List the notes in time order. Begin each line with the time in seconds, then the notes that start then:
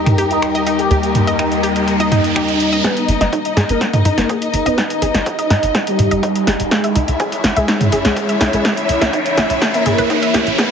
Already playing: D#2 G3 A#3 D#4 G4 A#4, riser
0.06 finger snap, closed hi-hat, mid tom
0.18 G4, open hi-hat
0.31 D#4, closed hi-hat
0.38 D#5
0.42 finger snap, closed hi-hat
0.55 D#5, closed hi-hat
0.67 D#4, open hi-hat
0.79 G4, closed hi-hat
0.91 D#2 C#4 G4, closed hi-hat
1.03 closed hi-hat
1.15 mid tom, open hi-hat
1.27 D#5, closed hi-hat
1.39 D#4, finger snap, closed hi-hat
1.52 closed hi-hat
1.63 G4, open hi-hat
1.76 closed hi-hat
1.88 closed hi-hat
2.00 D#4 D#5, closed hi-hat
2.12 D#4, mid tom, open hi-hat
2.24 closed hi-hat
2.36 G4, finger snap, closed hi-hat
2.48 closed hi-hat
2.60 open hi-hat
2.73 D#5, closed hi-hat
2.84 B3 D#4 G#4 B4 D#5, kick, snare, closed hi-hat, riser
2.97 closed hi-hat
3.08 G#1, open hi-hat
3.21 G#1 D#5, snare, closed hi-hat
3.33 D#4, kick, closed hi-hat
3.45 closed hi-hat
3.57 G#2 G#4, snare, open hi-hat
3.69 G#1 A#3 A#4, closed hi-hat
3.81 kick, snare, closed hi-hat
3.93 D#5, closed hi-hat, mid tom
4.05 G#2 D#4, open hi-hat
4.18 G#1 A#3 A#4, snare, closed hi-hat
4.29 G#4, kick, closed hi-hat
4.42 closed hi-hat
4.54 G#1, open hi-hat
4.66 D#1 B3 B4 D#5, closed hi-hat
4.78 D#4, kick, snare, closed hi-hat
4.90 closed hi-hat
5.02 G#1 G#4, open hi-hat
5.14 G#1, snare, closed hi-hat
5.26 kick, closed hi-hat
5.39 D#5, closed hi-hat
5.50 G#2 D#4, snare, open hi-hat
5.63 G#1, closed hi-hat
5.75 G#4, kick, snare, closed hi-hat
5.87 G3 G4, closed hi-hat
5.99 G#2, mid tom, open hi-hat
6.11 G#1 D#5, closed hi-hat
6.23 D#4, kick, closed hi-hat
6.35 closed hi-hat
6.47 G#1 G#4, snare, open hi-hat
6.60 D#1, closed hi-hat
6.71 G#3 C#4 E4 G#4, kick, snare, closed hi-hat
6.84 E5, closed hi-hat
6.96 C#2 D#4, open hi-hat
7.08 C#2 E5, closed hi-hat
7.20 G#4 C#5, kick, closed hi-hat
7.32 closed hi-hat
7.44 G#1, snare, open hi-hat
7.56 C#2 G#3 G#4 E5, closed hi-hat
7.68 D#4, kick, snare, closed hi-hat
7.81 closed hi-hat, mid tom
7.92 G#1 G#4, open hi-hat
8.05 C#2 G#3 G#4, snare, closed hi-hat
8.17 kick, closed hi-hat
8.29 E5, closed hi-hat
8.41 C#2 D#4, snare, open hi-hat
8.53 B1 G#3 G#4, closed hi-hat
8.65 G#4, kick, snare, closed hi-hat
8.77 closed hi-hat
8.89 C#2, open hi-hat
9.01 C#2 E5, snare, closed hi-hat
9.13 D#4, kick, closed hi-hat
9.26 closed hi-hat
9.37 G#1 G#4, snare, open hi-hat
9.50 C#2, closed hi-hat
9.62 kick, snare, closed hi-hat
9.74 A#3 A#4 E5, closed hi-hat
9.86 G#1 G#4, mid tom, open hi-hat
9.98 C#2 B4, closed hi-hat
10.10 D#4, kick, closed hi-hat
10.22 E5, closed hi-hat
10.34 C#2 G4, snare, open hi-hat
10.47 B1, closed hi-hat
10.58 B3 G#4 B4, kick, snare, closed hi-hat